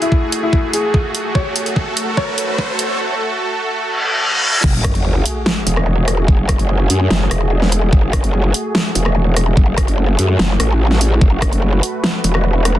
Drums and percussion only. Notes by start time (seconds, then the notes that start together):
0.02 closed hi-hat
0.12 kick
0.32 closed hi-hat
0.53 kick
0.73 closed hi-hat
0.94 kick
1.15 closed hi-hat
1.35 kick
1.56 closed hi-hat
1.66 closed hi-hat
1.76 kick
1.97 closed hi-hat
2.17 kick
2.38 closed hi-hat
2.58 kick
2.79 closed hi-hat
4.64 kick, crash
4.84 kick, cross-stick, closed hi-hat
4.95 closed hi-hat
5.26 closed hi-hat
5.46 snare
5.67 closed hi-hat
5.77 cross-stick
6.08 cross-stick, closed hi-hat
6.28 kick
6.49 kick, cross-stick, closed hi-hat
6.59 closed hi-hat
6.90 closed hi-hat
7.11 snare
7.31 cross-stick, closed hi-hat
7.62 snare
7.72 closed hi-hat
7.93 kick
8.13 kick, cross-stick, closed hi-hat
8.24 closed hi-hat
8.54 closed hi-hat
8.75 snare
8.95 closed hi-hat
9.06 cross-stick
9.37 cross-stick, closed hi-hat
9.57 kick
9.78 kick, cross-stick, closed hi-hat
9.88 closed hi-hat
10.19 closed hi-hat
10.39 snare
10.60 cross-stick, closed hi-hat
10.91 snare
11.01 closed hi-hat
11.21 kick
11.42 kick, cross-stick, closed hi-hat
11.53 closed hi-hat
11.83 closed hi-hat
12.04 snare
12.24 closed hi-hat
12.35 cross-stick
12.65 cross-stick, closed hi-hat